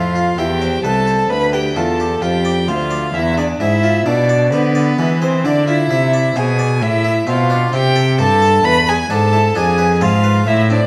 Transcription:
Already playing: harpsichord F2 E4, cello F2, violin F4 F5
0.16 harpsichord F4
0.38 harpsichord E2 E4, cello E2, violin G4 G5
0.62 harpsichord C5
0.84 cello C2, harpsichord C2 B4, violin A4 A5
1.07 harpsichord C5
1.30 harpsichord D2, cello D2, violin B4 B5
1.53 violin G4 G5, harpsichord B4
1.76 harpsichord E2 F4, cello E2, violin A4 A5
2.00 harpsichord G4
2.22 harpsichord F2 F4, cello F2, violin G4 G5
2.45 harpsichord D5
2.68 harpsichord D2 C5, cello D2, violin F4 F5
2.91 harpsichord D5
3.14 harpsichord E2, cello E2, violin E4 E5
3.38 violin D4 D5, harpsichord G#4
3.60 cello G#2, harpsichord G#2 E4, violin E4 E5
3.83 harpsichord F4
4.06 cello B2, harpsichord B2 E4, violin D4 D5
4.29 harpsichord D5
4.52 harpsichord D3 C5, cello D3, violin B3 B4
4.75 harpsichord D5
4.98 cello E3, harpsichord E3 G#3
5.22 violin C4 C5, harpsichord G#4
5.44 cello D3, harpsichord D3 E4, violin D4 D5
5.68 violin E4 E5, harpsichord F4
5.91 harpsichord C3 E4, cello C3
6.14 harpsichord D5
6.36 harpsichord B2 C5, cello B2, violin G#4 G#5
6.59 harpsichord D5
6.82 harpsichord A2, cello A2, violin E4 E5
7.04 harpsichord E4
7.27 harpsichord B2 C4, cello B2, violin F4 F5
7.50 harpsichord D4
7.73 harpsichord C3 C4, cello C3, violin G4 G5
7.96 harpsichord A4
8.19 harpsichord G2 G4, cello G2, violin A4 A5
8.42 harpsichord A4
8.64 harpsichord E2, cello E2, violin B4 B5
8.87 violin G#4 G#5, harpsichord B4
9.10 harpsichord G#2 D4, cello G#2, violin A4 A5
9.33 harpsichord E4
9.55 harpsichord F2 D4, cello F2, violin G#4 G#5
9.78 harpsichord B4
10.01 harpsichord G#2 A4, cello G#2, violin F4 F5
10.24 harpsichord B4
10.47 harpsichord A2, cello A2, violin E4 E5
10.70 harpsichord C4, violin D4 D5

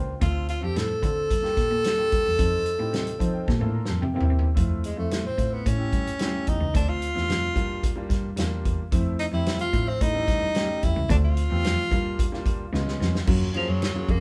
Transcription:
Already playing: cello C#2, grand piano A#3 D4 F4 C5 G5
0.19 cello D2, grand piano C4 D4 F4 A4, tenor saxophone F4, kick, closed hi-hat
0.48 tenor saxophone F4, closed hi-hat
0.61 cello F2, grand piano C4 D4 F4 A4, tenor saxophone G4
0.76 cello A2, tenor saxophone A4, snare, closed hi-hat
1.01 cello D3, grand piano C4 D4 F4 A4, kick, closed hi-hat
1.30 cello G2, kick, closed hi-hat
1.42 grand piano A#3 D4 F4 G4, snare
1.57 cello A#2, kick, snare, closed hi-hat
1.71 cello A#2
1.84 snare, closed hi-hat
1.96 grand piano A#3 D4 F4 G4
2.12 cello G2, kick, closed hi-hat
2.26 cello E2
2.37 cello F2, grand piano C4 D#4 F4 A4, kick, closed hi-hat
2.66 closed hi-hat
2.78 cello A2, grand piano C4 D#4 F4 G4
2.93 cello C3, snare, closed hi-hat
3.07 closed hi-hat
3.19 cello F3, grand piano C4 D#4 F4 C5 A5, kick, closed hi-hat
3.33 grand piano G5
3.47 cello A#2, grand piano A5, kick, snare
3.59 cello A2, grand piano A#3 C4 F4 A4
3.66 grand piano D4
3.74 grand piano A#5
3.86 cello F2, grand piano A5, snare
4.01 cello C3, grand piano G5, mid tom
4.14 cello C3, grand piano A#3 C4 E4 G4 F5
4.21 floor tom
4.28 cello C4, grand piano E5
4.39 floor tom
4.54 cello F2, grand piano A3 C4 E4 F4, kick, closed hi-hat
4.84 tenor saxophone G#3, closed hi-hat
4.95 cello F2, grand piano A3 C4 E4 F4, tenor saxophone A3
5.11 snare, closed hi-hat
5.25 cello A2, tenor saxophone C4
5.36 cello A2, grand piano A3 C4 E4 F4, kick, closed hi-hat
5.53 tenor saxophone B3
5.66 cello A2, tenor saxophone C#4, kick, closed hi-hat
5.77 grand piano A3 C#4 E4 G4
5.93 cello G2, kick, closed hi-hat
6.07 cello G2, closed hi-hat
6.18 grand piano A3 C4 E4 G4, snare, closed hi-hat
6.25 grand piano C#4
6.47 cello E2, tenor saxophone D#4, kick, closed hi-hat
6.61 cello C#2
6.73 cello D2, grand piano A3 C4 D4 F4, tenor saxophone D4, kick, closed hi-hat
6.89 tenor saxophone F4
7.02 closed hi-hat
7.14 cello E2, grand piano A3 C4 D4 F4, snare
7.29 cello F2, snare, closed hi-hat
7.55 cello G2, grand piano G3 A#3 D4 F4, kick, closed hi-hat
7.83 kick, closed hi-hat
7.96 grand piano G3 A#3 D4 F4
8.10 cello G2, kick, snare, closed hi-hat
8.36 cello E2, grand piano G3 A3 D4 F4, snare, closed hi-hat
8.44 grand piano A#3
8.65 cello E2, kick, closed hi-hat
8.91 cello F2, grand piano F3 A3 C4 E4, kick, closed hi-hat
9.19 tenor saxophone D#4, closed hi-hat
9.32 cello F2, grand piano F3 A3 C4 G4, tenor saxophone E4
9.46 snare, closed hi-hat
9.59 tenor saxophone F4, closed hi-hat
9.72 cello A2, grand piano F3 A3 C4 D4, kick, closed hi-hat
9.88 tenor saxophone C4
10.01 cello A2, tenor saxophone D#4, kick, closed hi-hat
10.13 grand piano E3 G3 A3 C#4
10.28 cello G2, kick, snare, closed hi-hat
10.41 cello G2
10.55 grand piano G3 A3 C#4 G4, snare, closed hi-hat
10.83 cello E2, tenor saxophone E4, kick, closed hi-hat
10.96 cello C#2
11.08 cello D2, grand piano A3 C4 D4 F4, tenor saxophone D4, kick, closed hi-hat
11.25 tenor saxophone F4
11.37 closed hi-hat
11.49 cello E2, grand piano A3 C4 D4 G4
11.64 cello F2, snare, closed hi-hat
11.91 cello G2, grand piano G3 A#3 D4 F4, kick, closed hi-hat
12.19 kick, closed hi-hat
12.32 grand piano G3 A#3 D4 F4, snare
12.46 cello G2, kick, closed hi-hat
12.72 cello C#2, grand piano G#3 B3 C#4 F4, snare
12.88 snare
13.01 cello F2, snare
13.15 snare
13.26 cello F#2, grand piano F#3 A#3 C#4 F4 F#4, kick, crash
13.53 tenor saxophone F3, grand piano F#3 A#3 C#4 F4 G#4, ride
13.68 cello F#2, tenor saxophone F#3
13.82 snare, ride
13.94 grand piano F#3 A#3 C#4 F4 G#4
14.09 cello F2, tenor saxophone A#3, kick, ride

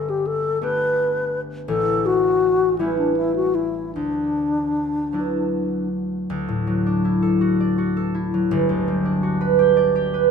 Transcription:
Already playing: harp G1 D4, alto flute A4
0.10 alto flute G4
0.27 alto flute A4
0.62 harp A3 B3 D4 G4, alto flute B4
1.68 harp A1, alto flute A4
2.06 alto flute F#4
2.78 harp G3 B3 C#4 E4, alto flute E4
2.99 alto flute D4
3.17 alto flute E4
3.36 alto flute F#4
3.55 alto flute E4
3.95 harp D2, alto flute D4
5.13 harp F#3 B3 D4 E4
6.30 harp D2
6.48 harp A2
6.67 harp F#3
6.86 harp D4
7.05 harp E4
7.22 harp A4
7.41 harp F#4
7.60 harp D5
7.78 harp F#4
7.97 harp A4
8.14 harp E4
8.34 harp F#3
8.51 harp G1
8.69 harp D2
8.88 harp G3
9.05 harp D4
9.23 harp F#4
9.41 harp B4
9.59 harp G4
9.77 harp D5
9.95 harp G4
10.14 harp B4

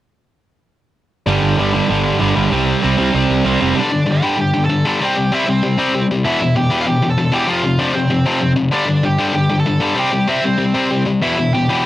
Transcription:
1.26 picked electric bass G1, distorted electric guitar G2 D3 G3
1.43 picked electric bass G1
1.57 picked electric bass G1, distorted electric guitar G2 D3 G3
1.73 distorted electric guitar G2 D3 G3
1.88 picked electric bass G1, distorted electric guitar G2 D3 G3
2.19 picked electric bass G1, distorted electric guitar G2 D3 G3
2.36 picked electric bass G1, distorted electric guitar G2 D3 G3
2.51 picked electric bass C2, distorted electric guitar C3 G3 C4
2.82 picked electric bass C2, distorted electric guitar C3 G3 C4
2.98 picked electric bass C2, distorted electric guitar C3 G3 C4
3.15 picked electric bass C2, distorted electric guitar C3 G3 C4
3.30 picked electric bass C2
3.45 picked electric bass C2, distorted electric guitar C3 G3 C4
3.61 picked electric bass F1, distorted electric guitar C3 G3 C4
3.75 distorted electric guitar G2 D3 G3, lead electric guitar D4
3.80 lead electric guitar D5
3.91 distorted electric guitar G2 D3
4.06 distorted electric guitar G2 D3
4.11 lead electric guitar G4 G5
4.22 distorted electric guitar G2 D3 G3
4.37 distorted electric guitar G2 D3, lead electric guitar G4
4.41 lead electric guitar G5
4.53 distorted electric guitar G2 D3
4.64 lead electric guitar A4 A5
4.69 distorted electric guitar G2 D3
4.85 distorted electric guitar G2 D3 G3, lead electric guitar A4 A5
5.01 distorted electric guitar C3 G3 C4, lead electric guitar G4
5.05 lead electric guitar G5
5.16 distorted electric guitar C3 G3
5.32 distorted electric guitar C3 G3 C4, lead electric guitar E4 E5
5.47 distorted electric guitar C3 G3, lead electric guitar C4 C5
5.63 distorted electric guitar C3 G3
5.78 distorted electric guitar C3 G3 C4
5.94 distorted electric guitar C3 G3
6.11 distorted electric guitar C3 G3
6.25 distorted electric guitar E2 B2 E3, lead electric guitar E4 E5
6.42 distorted electric guitar E2 B2
6.56 distorted electric guitar E2 B2, lead electric guitar G4 G5
6.70 distorted electric guitar E2 B2 E3
6.81 lead electric guitar F5
6.86 distorted electric guitar E2 B2, lead electric guitar G4 G5
7.02 distorted electric guitar E2 B2
7.10 lead electric guitar A4 A5
7.18 distorted electric guitar E2 B2
7.32 distorted electric guitar E2 B2 E3, lead electric guitar G4 G5
7.48 distorted electric guitar F2 C3 F3, lead electric guitar F4 F5
7.64 distorted electric guitar F2 C3
7.79 distorted electric guitar F2 C3 F3, lead electric guitar D4 D5
7.94 distorted electric guitar F2 C3, lead electric guitar C4 C5
8.10 distorted electric guitar F2 C3
8.26 distorted electric guitar F2 C3 F3
8.41 distorted electric guitar F2 C3
8.56 distorted electric guitar F2 C3
8.71 distorted electric guitar G2 D3 G3, lead electric guitar D4 D5
8.86 distorted electric guitar G2 D3
9.03 distorted electric guitar G2 D3, lead electric guitar G4 G5
9.18 distorted electric guitar G2 D3 G3
9.33 distorted electric guitar G2 D3, lead electric guitar G4 G5
9.49 distorted electric guitar G2 D3
9.59 lead electric guitar A4 A5
9.66 distorted electric guitar G2 D3
9.80 distorted electric guitar G2 D3 G3, lead electric guitar A5
9.84 lead electric guitar A4
9.95 distorted electric guitar C3 G3 C4, lead electric guitar G4 G5
10.12 distorted electric guitar C3 G3
10.28 distorted electric guitar C3 G3 C4, lead electric guitar E4 E5
10.42 distorted electric guitar C3 G3, lead electric guitar C4 C5
10.58 distorted electric guitar C3 G3
10.74 distorted electric guitar C3 G3 C4
10.90 distorted electric guitar C3 G3
11.05 distorted electric guitar C3 G3
11.22 distorted electric guitar E2 B2 E3, lead electric guitar E4 E5
11.38 distorted electric guitar E2 B2
11.54 distorted electric guitar E2 B2, lead electric guitar G4 G5
11.69 distorted electric guitar E2 B2 E3

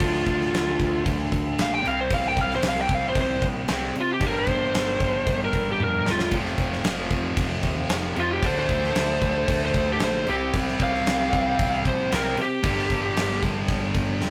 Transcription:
Already playing: overdriven electric guitar D3, lead electric guitar F4
0.00 picked electric bass D2, overdriven electric guitar A3 D4, kick, crash
0.14 snare
0.26 picked electric bass D2, kick, crash
0.41 snare
0.53 picked electric bass D2, snare, crash
0.79 picked electric bass D2, kick, crash
1.06 picked electric bass D2, kick, crash
1.32 picked electric bass D2, kick, crash
1.58 picked electric bass A#1, lead electric guitar F5, snare, crash
1.74 lead electric guitar G5
1.83 picked electric bass C2, overdriven electric guitar C3 G3 C4, crash
1.87 lead electric guitar F5
2.01 lead electric guitar C5
2.11 picked electric bass C2, lead electric guitar F5, kick, crash
2.28 lead electric guitar G5
2.36 picked electric bass C2, kick, crash
2.41 lead electric guitar F5
2.51 snare
2.55 lead electric guitar C5
2.62 picked electric bass C2, snare, crash
2.68 lead electric guitar F5
2.81 lead electric guitar G5
2.89 picked electric bass C2, kick, crash
2.95 lead electric guitar F5
3.09 lead electric guitar C5
3.15 picked electric bass C2, kick, crash
3.21 lead electric guitar C5
3.42 picked electric bass A#1, kick, crash
3.68 picked electric bass C2, overdriven electric guitar C3 G3 C4, snare, crash
3.95 picked electric bass C3, crash
4.01 lead electric guitar F4
4.13 lead electric guitar G4
4.20 picked electric bass G1, overdriven electric guitar G2 D3 G3, kick, crash
4.27 lead electric guitar A#4
4.39 lead electric guitar C5
4.47 picked electric bass G1, kick, crash
4.74 picked electric bass G1, snare, crash
5.00 picked electric bass G1, kick, crash
5.27 picked electric bass G1, kick, crash
5.45 lead electric guitar A#4
5.53 picked electric bass G1, kick, crash
5.72 lead electric guitar G4
5.79 picked electric bass F2, lead electric guitar A#4, high tom
6.05 picked electric bass E1, overdriven electric guitar G2 D3 G3, snare
6.11 lead electric guitar F4
6.19 snare
6.31 picked electric bass F1, overdriven electric guitar F2 C3 F3, kick, crash
6.46 snare
6.58 picked electric bass F1, kick, crash
6.73 snare
6.84 picked electric bass F1, snare, crash
7.11 picked electric bass F1, kick, crash
7.37 picked electric bass F1, kick, crash
7.63 picked electric bass D#2, kick, crash
7.89 picked electric bass F1, snare, crash
8.15 picked electric bass F2, overdriven electric guitar F2 C3 F3, crash
8.20 lead electric guitar F4
8.33 lead electric guitar G4
8.42 picked electric bass D2, overdriven electric guitar D3 A3 D4, lead electric guitar C5, kick, crash
8.59 lead electric guitar C5
8.69 picked electric bass D2, kick, crash
8.83 snare
8.95 picked electric bass D2, snare, crash
9.22 picked electric bass D2, kick, crash
9.48 picked electric bass D2, kick, crash
9.65 lead electric guitar C5
9.74 picked electric bass D2, kick, crash
9.93 lead electric guitar G4
10.00 picked electric bass A#1, lead electric guitar C5, snare, crash
10.27 picked electric bass C2, overdriven electric guitar C3 G3 C4, lead electric guitar G4, crash
10.53 picked electric bass C2, kick, crash
10.68 snare
10.80 picked electric bass C2, lead electric guitar F5, kick, crash
10.95 snare
11.06 picked electric bass C2, snare, crash
11.32 picked electric bass C2, kick, crash
11.59 picked electric bass C2, kick, crash
11.85 picked electric bass A#1, lead electric guitar C5, kick, crash
12.10 picked electric bass C2, overdriven electric guitar C3 G3 C4, snare, crash
12.15 lead electric guitar A#4
12.37 picked electric bass C3, crash
12.41 lead electric guitar G4
12.63 picked electric bass G1, overdriven electric guitar G2 D3 G3, kick, crash
12.79 snare
12.90 picked electric bass G1, kick, crash
13.17 picked electric bass G1, snare, crash
13.43 picked electric bass G1, kick, crash
13.68 picked electric bass G1, kick, crash
13.95 picked electric bass G1, kick, crash
14.21 picked electric bass F2, snare

